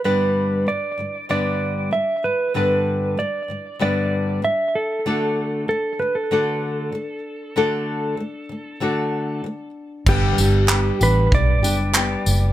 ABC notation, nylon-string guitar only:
X:1
M:4/4
L:1/8
Q:1/4=96
K:G
V:1 name="Nylon-string guitar"
[G,,D,G,B,DB]2 G,, [G,,D,G,] [G,,D,G,B,DB]2 [G,,D,G,] [G,,D,G,] | [G,,D,G,B,DB]2 G,, [G,,D,G,] [G,,D,G,B,DB]2 [G,,D,G,] z | [D,A,DFA]2 D, [D,A,] [D,A,DFA]2 [D,A,] z | [D,A,DFA]2 A, [D,A,] [D,A,DFA]2 [D,A,] z |
[G,,D,G,B,DG] [G,B,DG] [G,B,DG] [G,B,DG]2 [G,B,DG] [G,B,DG]2 |]